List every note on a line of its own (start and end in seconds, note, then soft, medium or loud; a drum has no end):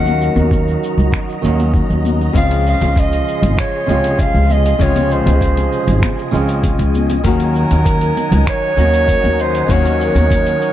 0.00 0.28 D#2 medium
0.00 1.39 D#3 medium
0.00 1.39 F#3 medium
0.00 1.40 A#3 medium
0.00 1.40 C#4 medium
0.00 1.41 F#4 loud
0.00 2.31 F#4 medium
0.00 7.20 D#5 medium
0.00 0.48 F#5 loud
0.00 2.32 A#5 medium
0.05 muted conga soft
0.05 high conga medium
0.05 shaker soft
0.22 shaker medium
0.36 0.74 D#2 medium
0.36 high conga medium
0.36 shaker soft
0.51 kick loud
0.51 muted conga medium
0.51 shaker soft
0.68 shaker soft
0.84 shaker medium
0.98 1.08 C#2 medium
0.98 low conga medium
0.98 shaker soft
1.12 finger snap medium
1.12 kick loud
1.12 muted conga soft
1.12 shaker soft
1.29 shaker soft
1.42 1.82 D#2 medium
1.42 2.31 D#3 medium
1.42 2.31 F#3 medium
1.42 2.32 A#3 medium
1.42 2.32 C#4 medium
1.42 shaker medium
1.46 2.33 F#4 medium
1.59 muted conga medium
1.59 shaker soft
1.74 kick loud
1.74 shaker soft
1.90 2.28 D#2 medium
1.90 shaker soft
2.05 high conga medium
2.05 shaker medium
2.21 muted conga soft
2.21 shaker soft
2.33 2.73 C#2 medium
2.33 3.84 C#3 medium
2.33 3.84 F3 medium
2.33 3.85 G#3 medium
2.33 3.85 C4 medium
2.33 3.86 F4 loud
2.33 7.21 G#4 medium
2.33 4.78 C6 medium
2.33 kick loud
2.33 closed hi-hat medium
2.33 muted conga soft
2.33 shaker soft
2.38 2.65 F5 loud
2.51 closed hi-hat soft
2.67 3.01 F5 loud
2.67 shaker medium
2.81 3.19 C#2 medium
2.81 closed hi-hat soft
2.81 muted conga medium
2.81 shaker soft
2.96 3.59 D#5 medium
2.96 kick loud
2.96 closed hi-hat soft
2.96 shaker soft
3.13 closed hi-hat soft
3.13 shaker soft
3.28 shaker medium
3.42 3.53 G#1 medium
3.42 closed hi-hat soft
3.42 muted conga soft
3.42 low conga medium
3.42 shaker soft
3.58 4.22 C#5 medium
3.58 finger snap medium
3.58 kick loud
3.58 closed hi-hat medium
3.58 shaker soft
3.87 4.26 C#2 medium
3.87 4.77 C3 medium
3.87 4.75 C#3 medium
3.87 4.76 F3 medium
3.87 4.76 G#3 medium
3.87 muted conga medium
3.87 shaker medium
3.91 4.78 F4 medium
4.04 closed hi-hat soft
4.04 shaker soft
4.19 4.53 F5 loud
4.19 kick loud
4.19 closed hi-hat medium
4.19 shaker soft
4.34 4.72 C#2 medium
4.34 shaker soft
4.50 4.83 D#5 medium
4.50 muted conga soft
4.50 shaker medium
4.66 closed hi-hat soft
4.66 shaker soft
4.79 5.18 C#2 medium
4.79 6.30 C3 medium
4.79 6.29 C#3 medium
4.79 6.29 F3 medium
4.79 6.30 G#3 medium
4.79 6.31 F4 loud
4.79 5.14 C#5 medium
4.79 10.73 G#5 medium
4.79 kick medium
4.79 closed hi-hat medium
4.79 shaker soft
4.96 closed hi-hat soft
4.96 muted conga medium
4.96 high conga medium
4.96 shaker soft
5.11 6.34 C5 medium
5.11 shaker medium
5.26 5.64 C#2 medium
5.26 closed hi-hat soft
5.26 high conga medium
5.26 shaker soft
5.41 kick medium
5.41 closed hi-hat soft
5.41 shaker soft
5.57 closed hi-hat soft
5.57 muted conga soft
5.57 shaker soft
5.73 shaker medium
5.87 5.98 G#1 medium
5.87 closed hi-hat soft
5.87 low conga medium
5.87 shaker soft
6.02 finger snap medium
6.02 kick loud
6.02 closed hi-hat medium
6.02 muted conga medium
6.02 shaker soft
6.19 shaker soft
6.31 6.71 C#2 medium
6.31 7.20 C#3 medium
6.31 7.21 F3 medium
6.31 7.21 G#3 medium
6.31 7.22 C4 medium
6.31 7.22 F4 medium
6.31 shaker medium
6.49 closed hi-hat soft
6.49 shaker soft
6.63 kick loud
6.63 closed hi-hat soft
6.63 muted conga medium
6.63 shaker soft
6.79 7.17 C#2 medium
6.79 closed hi-hat soft
6.79 shaker soft
6.94 high conga medium
6.94 shaker medium
7.10 closed hi-hat soft
7.10 muted conga medium
7.10 shaker soft
7.24 7.63 D#2 medium
7.24 8.74 D#3 loud
7.24 8.74 F#3 medium
7.24 8.75 A#3 medium
7.24 8.75 C#4 medium
7.24 8.75 F#4 medium
7.24 8.51 A#4 loud
7.24 10.73 A#4 medium
7.24 10.73 D#5 medium
7.24 10.73 F#5 medium
7.24 kick medium
7.24 closed hi-hat medium
7.24 shaker soft
7.40 closed hi-hat soft
7.55 shaker medium
7.71 8.09 D#2 medium
7.71 closed hi-hat soft
7.71 muted conga medium
7.71 shaker soft
7.86 kick loud
7.86 closed hi-hat medium
7.86 shaker soft
8.01 closed hi-hat soft
8.01 shaker soft
8.17 muted conga medium
8.17 shaker medium
8.32 8.42 C#2 medium
8.32 closed hi-hat soft
8.32 low conga medium
8.32 shaker soft
8.47 9.43 C#5 loud
8.47 finger snap medium
8.47 kick loud
8.47 closed hi-hat medium
8.47 shaker soft
8.76 9.16 D#2 medium
8.76 9.65 D#3 medium
8.76 9.66 F#3 medium
8.76 9.66 A#3 medium
8.76 9.67 C#4 medium
8.76 9.67 F#4 medium
8.76 muted conga medium
8.76 shaker medium
8.94 closed hi-hat soft
8.94 shaker soft
9.08 kick loud
9.08 closed hi-hat medium
9.08 shaker soft
9.24 9.62 D#2 medium
9.24 muted conga medium
9.24 shaker soft
9.39 9.74 C5 loud
9.39 shaker medium
9.55 closed hi-hat soft
9.55 shaker soft
9.68 10.08 D#2 medium
9.68 10.73 D#3 medium
9.68 10.73 F#3 medium
9.68 10.73 A#3 medium
9.68 10.73 C#4 medium
9.68 10.73 F#4 loud
9.68 kick medium
9.68 closed hi-hat medium
9.68 shaker soft
9.72 10.73 C#5 loud
9.85 closed hi-hat soft
9.85 muted conga medium
9.85 high conga medium
9.85 shaker soft
10.01 shaker medium
10.15 10.54 D#2 medium
10.15 closed hi-hat soft
10.15 high conga medium
10.15 shaker soft
10.31 kick medium
10.31 closed hi-hat medium
10.31 muted conga medium
10.31 shaker soft
10.47 closed hi-hat soft
10.47 shaker soft
10.62 shaker medium